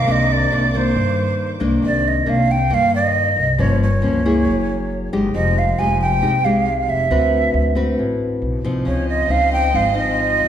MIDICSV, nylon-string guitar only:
0, 0, Header, 1, 2, 480
1, 0, Start_track
1, 0, Key_signature, -3, "minor"
1, 0, Tempo, 438917
1, 87, Time_signature, 4, 2, 24, 8
1, 11461, End_track
2, 0, Start_track
2, 0, Title_t, "Nylon-string guitar"
2, 0, Program_c, 0, 24
2, 74, Note_on_c, 0, 48, 57
2, 79, Note_on_c, 0, 51, 56
2, 82, Note_on_c, 0, 58, 60
2, 88, Note_on_c, 0, 62, 61
2, 523, Note_off_c, 0, 51, 0
2, 526, Note_off_c, 0, 58, 0
2, 529, Note_off_c, 0, 62, 0
2, 566, Note_on_c, 0, 51, 57
2, 572, Note_on_c, 0, 58, 50
2, 575, Note_on_c, 0, 62, 62
2, 707, Note_off_c, 0, 51, 0
2, 711, Note_off_c, 0, 58, 0
2, 711, Note_off_c, 0, 62, 0
2, 804, Note_on_c, 0, 51, 66
2, 811, Note_on_c, 0, 58, 62
2, 820, Note_on_c, 0, 62, 68
2, 1017, Note_off_c, 0, 48, 0
2, 1041, Note_on_c, 0, 43, 54
2, 1726, Note_off_c, 0, 51, 0
2, 1730, Note_off_c, 0, 58, 0
2, 1732, Note_off_c, 0, 62, 0
2, 1748, Note_on_c, 0, 51, 60
2, 1753, Note_on_c, 0, 58, 62
2, 1758, Note_on_c, 0, 62, 73
2, 1979, Note_off_c, 0, 43, 0
2, 2002, Note_on_c, 0, 48, 55
2, 2438, Note_off_c, 0, 51, 0
2, 2441, Note_off_c, 0, 58, 0
2, 2443, Note_off_c, 0, 62, 0
2, 2472, Note_on_c, 0, 51, 51
2, 2474, Note_on_c, 0, 58, 53
2, 2481, Note_on_c, 0, 62, 58
2, 2788, Note_off_c, 0, 51, 0
2, 2789, Note_off_c, 0, 58, 0
2, 2792, Note_off_c, 0, 62, 0
2, 2939, Note_off_c, 0, 48, 0
2, 2951, Note_on_c, 0, 43, 53
2, 2955, Note_on_c, 0, 51, 60
2, 2961, Note_on_c, 0, 58, 52
2, 3606, Note_off_c, 0, 51, 0
2, 3606, Note_off_c, 0, 58, 0
2, 3894, Note_off_c, 0, 43, 0
2, 3918, Note_on_c, 0, 43, 61
2, 3923, Note_on_c, 0, 53, 62
2, 3926, Note_on_c, 0, 58, 52
2, 3929, Note_on_c, 0, 61, 63
2, 4232, Note_off_c, 0, 53, 0
2, 4234, Note_off_c, 0, 61, 0
2, 4235, Note_off_c, 0, 58, 0
2, 4396, Note_on_c, 0, 53, 58
2, 4406, Note_on_c, 0, 58, 51
2, 4412, Note_on_c, 0, 61, 60
2, 4602, Note_off_c, 0, 53, 0
2, 4607, Note_off_c, 0, 58, 0
2, 4610, Note_off_c, 0, 61, 0
2, 4651, Note_on_c, 0, 58, 66
2, 4657, Note_on_c, 0, 64, 67
2, 4658, Note_on_c, 0, 68, 68
2, 4859, Note_off_c, 0, 43, 0
2, 4887, Note_on_c, 0, 54, 55
2, 5570, Note_off_c, 0, 58, 0
2, 5571, Note_off_c, 0, 64, 0
2, 5573, Note_off_c, 0, 68, 0
2, 5607, Note_on_c, 0, 56, 69
2, 5608, Note_on_c, 0, 63, 64
2, 5612, Note_on_c, 0, 67, 68
2, 5822, Note_off_c, 0, 54, 0
2, 5847, Note_on_c, 0, 53, 56
2, 6288, Note_off_c, 0, 56, 0
2, 6288, Note_off_c, 0, 63, 0
2, 6289, Note_off_c, 0, 67, 0
2, 6336, Note_on_c, 0, 56, 55
2, 6341, Note_on_c, 0, 63, 57
2, 6347, Note_on_c, 0, 67, 66
2, 6772, Note_off_c, 0, 56, 0
2, 6775, Note_off_c, 0, 63, 0
2, 6777, Note_off_c, 0, 67, 0
2, 6782, Note_off_c, 0, 53, 0
2, 6797, Note_on_c, 0, 56, 54
2, 6799, Note_on_c, 0, 48, 52
2, 6808, Note_on_c, 0, 63, 56
2, 6809, Note_on_c, 0, 67, 56
2, 6942, Note_off_c, 0, 56, 0
2, 6945, Note_off_c, 0, 67, 0
2, 6947, Note_off_c, 0, 63, 0
2, 7056, Note_on_c, 0, 56, 63
2, 7063, Note_on_c, 0, 63, 62
2, 7063, Note_on_c, 0, 67, 58
2, 7733, Note_off_c, 0, 56, 0
2, 7733, Note_off_c, 0, 63, 0
2, 7736, Note_off_c, 0, 67, 0
2, 7740, Note_off_c, 0, 48, 0
2, 7770, Note_on_c, 0, 50, 57
2, 7771, Note_on_c, 0, 60, 60
2, 7776, Note_on_c, 0, 66, 59
2, 7784, Note_on_c, 0, 71, 60
2, 8449, Note_off_c, 0, 60, 0
2, 8452, Note_off_c, 0, 66, 0
2, 8456, Note_off_c, 0, 71, 0
2, 8478, Note_on_c, 0, 60, 59
2, 8488, Note_on_c, 0, 66, 61
2, 8492, Note_on_c, 0, 71, 68
2, 8704, Note_off_c, 0, 50, 0
2, 8737, Note_on_c, 0, 45, 49
2, 9403, Note_off_c, 0, 60, 0
2, 9408, Note_off_c, 0, 66, 0
2, 9410, Note_off_c, 0, 71, 0
2, 9454, Note_on_c, 0, 53, 59
2, 9455, Note_on_c, 0, 60, 68
2, 9463, Note_on_c, 0, 63, 68
2, 9667, Note_off_c, 0, 45, 0
2, 9679, Note_on_c, 0, 49, 61
2, 10131, Note_off_c, 0, 53, 0
2, 10131, Note_off_c, 0, 60, 0
2, 10136, Note_off_c, 0, 63, 0
2, 10157, Note_on_c, 0, 53, 53
2, 10163, Note_on_c, 0, 60, 50
2, 10169, Note_on_c, 0, 63, 58
2, 10603, Note_off_c, 0, 53, 0
2, 10605, Note_off_c, 0, 60, 0
2, 10608, Note_off_c, 0, 63, 0
2, 10618, Note_off_c, 0, 49, 0
2, 10636, Note_on_c, 0, 44, 51
2, 10638, Note_on_c, 0, 53, 50
2, 10643, Note_on_c, 0, 60, 46
2, 10646, Note_on_c, 0, 63, 56
2, 10782, Note_off_c, 0, 53, 0
2, 10783, Note_off_c, 0, 60, 0
2, 10787, Note_off_c, 0, 63, 0
2, 10867, Note_on_c, 0, 53, 59
2, 10874, Note_on_c, 0, 60, 61
2, 10881, Note_on_c, 0, 63, 68
2, 11461, Note_off_c, 0, 44, 0
2, 11461, Note_off_c, 0, 53, 0
2, 11461, Note_off_c, 0, 60, 0
2, 11461, Note_off_c, 0, 63, 0
2, 11461, End_track
0, 0, End_of_file